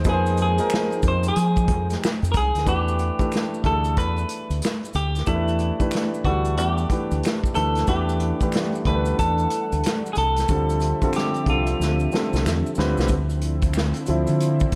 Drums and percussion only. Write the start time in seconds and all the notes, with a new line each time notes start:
0.04 kick, closed hi-hat, maracas
0.26 closed hi-hat, maracas
0.37 closed hi-hat, maracas
0.58 closed hi-hat, maracas
0.70 finger snap, snare, maracas
0.90 closed hi-hat, maracas
1.02 kick, closed hi-hat, maracas
1.23 closed hi-hat, maracas
1.36 closed hi-hat, maracas
1.56 kick, closed hi-hat, maracas
1.68 kick, closed hi-hat
1.90 snare, closed hi-hat, maracas
2.04 finger snap, snare, maracas
2.22 closed hi-hat, maracas
2.34 kick, closed hi-hat, maracas
2.55 snare, closed hi-hat, maracas
2.67 kick, closed hi-hat, maracas
2.88 maracas
2.99 closed hi-hat, maracas
3.19 kick, closed hi-hat, maracas
3.32 finger snap, snare, closed hi-hat, maracas
3.54 maracas
3.64 kick, closed hi-hat
3.84 closed hi-hat, maracas
3.97 kick, closed hi-hat, maracas
4.16 closed hi-hat, maracas
4.29 closed hi-hat, maracas
4.51 closed hi-hat, maracas
4.62 finger snap, snare, closed hi-hat, maracas
4.83 closed hi-hat, maracas
4.93 closed hi-hat, maracas
5.15 snare, closed hi-hat, maracas
5.26 kick, closed hi-hat, maracas
5.48 closed hi-hat, maracas
5.59 closed hi-hat, maracas
5.80 kick, closed hi-hat, maracas
5.91 finger snap, snare, closed hi-hat, maracas
6.14 maracas
6.25 kick, closed hi-hat
6.44 closed hi-hat, maracas
6.57 closed hi-hat, maracas
6.77 closed hi-hat, maracas
6.90 kick, closed hi-hat, maracas
7.11 closed hi-hat, maracas
7.23 finger snap, snare, closed hi-hat, maracas
7.44 kick, maracas
7.55 closed hi-hat, maracas
7.75 snare, closed hi-hat, maracas
7.87 kick, closed hi-hat, maracas
8.09 closed hi-hat, maracas
8.20 closed hi-hat, maracas
8.40 kick, closed hi-hat, maracas
8.52 finger snap, snare, closed hi-hat, maracas
8.72 closed hi-hat, maracas
8.85 kick, closed hi-hat
9.05 closed hi-hat, maracas
9.19 kick, closed hi-hat, maracas
9.38 closed hi-hat, maracas
9.50 closed hi-hat, maracas
9.72 closed hi-hat, maracas
9.83 finger snap, snare, closed hi-hat, maracas
10.06 maracas
10.15 closed hi-hat, maracas
10.36 snare, closed hi-hat, maracas
10.48 kick, closed hi-hat, maracas
10.69 closed hi-hat, maracas
10.80 closed hi-hat, maracas
11.01 kick, closed hi-hat, maracas
11.13 finger snap, closed hi-hat, maracas
11.18 snare
11.34 closed hi-hat, maracas
11.46 kick, closed hi-hat
11.66 closed hi-hat, maracas
11.81 snare, maracas
12.00 maracas
12.12 snare, maracas
12.33 snare, maracas
12.46 finger snap, snare, maracas
12.66 maracas
12.75 snare, maracas
12.97 snare, maracas
13.08 kick, closed hi-hat, maracas
13.29 closed hi-hat, maracas
13.41 closed hi-hat
13.61 kick, closed hi-hat, maracas
13.74 finger snap, snare, maracas
13.94 closed hi-hat, maracas
14.06 closed hi-hat, maracas
14.27 closed hi-hat, maracas
14.40 closed hi-hat, maracas
14.60 kick, closed hi-hat, maracas
14.72 closed hi-hat